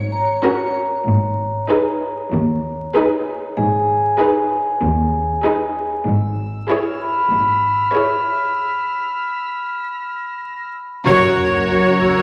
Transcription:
Already playing: G#1 G#2 C#5 C#7
0.12 C#5 A#5
0.44 C#4 F#4 A#4
1.06 G#1 G#2
1.69 D#4 G#4 B4
2.32 D#2
2.95 D#4 G#4 B4
3.57 G#1 G#2 G#4 G#5
4.19 D#4 G#4 B4
4.82 D#2
5.44 D#4 G#4 B4
6.07 G#1 G#2 E6
6.69 E4 G#4 C#5 F6
7.01 B5
7.31 G#1 G#2 B6
7.94 E4 G#4 C#5
9.87 A#6
11.06 F#1 F#2 F#4 A#4 C#5, taiko, sub drop
12.00 E6, taiko

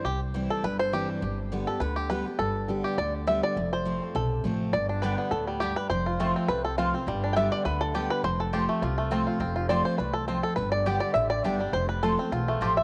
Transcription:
0.04 C2 C3 G4
0.34 E3 G3 C4 E4
0.50 A4
0.63 G1 G2 B4
0.79 C5
0.93 E3 G3 C4 E4 G4
1.22 G1 G2
1.52 D3 G3 B3 G4
1.67 B3 G4 A4
1.80 D2 D3 B4
1.96 G4
2.10 D3 G3 B3 G4 B4
2.26 B3 G4
2.39 G1 G2 A4
2.68 D3 G3 B3 G4
2.84 G4
2.98 D2 D3 D5
3.27 D3 G3 B3 G4 E5
3.43 D5
3.56 F1 F2
3.73 C5
3.85 F3 A3 C4 F4
4.15 B1 C3 A4
4.44 A1 F3 A3 C4 F4
4.73 G1 G2 D5
4.89 D4
5.02 D3 G3 B3 G4 B4 D5 G5
5.18 B3
5.31 D2 A2 A4
5.48 G3
5.60 G2 B3 G4 D5 G5
5.76 B4
5.90 F1 F2 C5
6.06 F4
6.19 F3 A3 C4 F4 C5 A5
6.36 C4
6.48 C2 C3 B4
6.65 A4
6.78 F3 A3 C4 F4 C5 F5 A5
6.94 C4 F4
7.07 G1 G2 G3
7.24 D4
7.33 D3 G3 B3 G4 D5 E5 G5
7.37 B3 G4
7.52 D5
7.65 D2 D3 B4
7.81 A4
7.94 D3 G3 B3 G4 D5 G5
8.10 B4
8.24 F1 F2 C5
8.40 A4
8.53 F3 A3 C4 F4 G4 C5 A5
8.69 A3
8.82 C2 C3 F4
8.98 A3
9.11 F3 A3 C4 F4 C5 A5
9.27 F4
9.40 F1 F2 C4
9.56 F4
9.69 F3 A3 C4 F4 C5 D5 A5
9.85 C5
9.98 C2 E2 B4
10.13 A4
10.28 F2 C4 F4 C5 A5
10.43 A4
10.56 G1 G2 B4
10.72 D5
10.86 D3 G3 B3 G4 D5 G5
11.00 D5
11.14 A1 D3 E5
11.30 D5
11.44 G1 D3 G3 B3 D4 G4 D5 G5
11.59 G3 B3 G4
11.73 F1 F2 C5
11.89 B4
12.03 F3 A3 C4 F4 A4 C5 A5
12.18 C4 F4
12.32 B1 E2 F4
12.48 A3
12.61 A1 F2 C4 F4 G4 C5 A5
12.77 E5

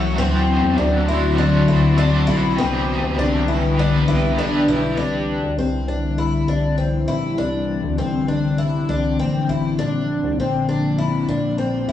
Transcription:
Already playing: C2 E3 F#3 A3 C#4 E4 F#4 C#5
0.17 D2 D3 F#3 A3 C4 D4 F#4
0.21 C5
0.63 E2
0.78 D2 D4
1.07 E4 F#4 C5
1.11 A3 D4
1.37 A3 D4 F#4
1.43 C5
1.68 D2 E4
1.97 A3 D4
2.01 F#4 C5
2.27 B1 E4
2.56 C2 C3 D3 E3 G3 B3 C4 D4 B4
2.62 D4 G4 B4
3.03 D2
3.18 C2 D4
3.48 E4
3.77 B3 D4 G4
3.83 B4
4.08 C2 E4
4.38 B1 B3 D4 G4
4.43 B4
4.68 B1 E4
4.97 C2 D3 E3 G3 C4 D4 E4
5.43 D2
5.58 C2 C4
5.88 D4
6.18 E4
6.48 C2 D4
6.78 C4
7.08 A#1 E4
7.38 C2 D4
7.83 D2
7.98 C2 C4
8.28 D4
8.58 E4
8.89 C2 D4
9.19 A#1 C4
9.49 A1 E4
9.77 A#1 F3 A#3 D4
10.23 C2
10.38 A#1 C4
10.69 D4
10.98 E4
11.29 A#1 D4
11.58 C4
11.88 F1 E4

